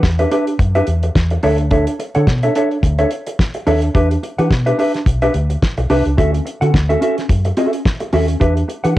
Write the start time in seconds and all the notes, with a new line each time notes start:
0.03 E2, muted clean electric guitar stroke, kick, snare
0.19 D4 G4 B4 E5, closed hi-hat
0.31 D4 G4 B4 E5, closed hi-hat
0.47 muted clean electric guitar stroke, closed hi-hat
0.59 F#2, muted clean electric guitar stroke, kick, closed hi-hat
0.75 D4 G4 B4 E5, closed hi-hat
0.87 E2, muted clean electric guitar stroke, closed hi-hat
1.03 muted clean electric guitar stroke, closed hi-hat
1.15 E2, kick, snare
1.30 muted clean electric guitar stroke, closed hi-hat
1.43 D2 D4 A4 C#5 E5, open hi-hat
1.58 muted clean electric guitar stroke, closed hi-hat
1.71 D4 A4 C#5 E5, kick, closed hi-hat
1.87 muted clean electric guitar stroke, closed hi-hat
1.99 muted clean electric guitar stroke, closed hi-hat
2.15 D3 D4 A4 C#5 F#5, closed hi-hat
2.27 B2, muted clean electric guitar stroke, kick, snare
2.43 D4 A4 C#5 E5, closed hi-hat
2.55 D4 A4 C#5 E5, closed hi-hat
2.71 muted clean electric guitar stroke, closed hi-hat
2.83 D2, muted clean electric guitar stroke, kick, closed hi-hat
2.98 D4 A4 C#5 E5, closed hi-hat
3.11 closed hi-hat
3.27 muted clean electric guitar stroke, closed hi-hat
3.39 kick, snare
3.54 muted clean electric guitar stroke, closed hi-hat
3.67 D#2 D4 A4 C#5 E5, open hi-hat
3.82 muted clean electric guitar stroke, closed hi-hat
3.95 E2 D4 G4 B4 E5, kick, closed hi-hat
4.11 muted clean electric guitar stroke, closed hi-hat
4.23 muted clean electric guitar stroke, closed hi-hat
4.38 E3 D4 G4 B4 F#5, closed hi-hat
4.50 B2, muted clean electric guitar stroke, kick, snare
4.66 D4 G4 B4 E5, closed hi-hat
4.79 D4 G4 B4 E5, open hi-hat
4.94 muted clean electric guitar stroke, snare, closed hi-hat
5.06 B1, muted clean electric guitar stroke, kick, closed hi-hat
5.22 D4 G4 B4 E5, closed hi-hat
5.34 D2, muted clean electric guitar stroke, closed hi-hat
5.50 muted clean electric guitar stroke, closed hi-hat
5.62 kick, snare
5.77 B1, muted clean electric guitar stroke, closed hi-hat
5.90 C2 D4 G4 B4 E5, open hi-hat
6.05 C#2, muted clean electric guitar stroke, closed hi-hat
6.17 D2 C#4 F#4 A4 E5, kick, closed hi-hat
6.33 muted clean electric guitar stroke, closed hi-hat
6.45 muted clean electric guitar stroke, closed hi-hat
6.61 D3 C#4 F#4 A4 F#5, closed hi-hat
6.73 D2, muted clean electric guitar stroke, kick, snare
6.89 C#4 F#4 A4 E5, closed hi-hat
7.01 C#4 F#4 A4 E5, closed hi-hat
7.18 muted clean electric guitar stroke, snare, closed hi-hat
7.29 F#2, muted clean electric guitar stroke, kick, closed hi-hat
7.45 muted clean electric guitar stroke, closed hi-hat
7.57 C#4 F#4 A4 E5, closed hi-hat
7.73 muted clean electric guitar stroke, closed hi-hat
7.86 kick, snare
8.00 muted clean electric guitar stroke, closed hi-hat
8.13 D#2 C#4 F#4 A4 E5, open hi-hat
8.28 muted clean electric guitar stroke, closed hi-hat
8.40 E2 D4 G4 B4 E5, kick, closed hi-hat
8.56 muted clean electric guitar stroke, closed hi-hat
8.68 muted clean electric guitar stroke, closed hi-hat
8.84 E3 D4 G4 B4 F#5, closed hi-hat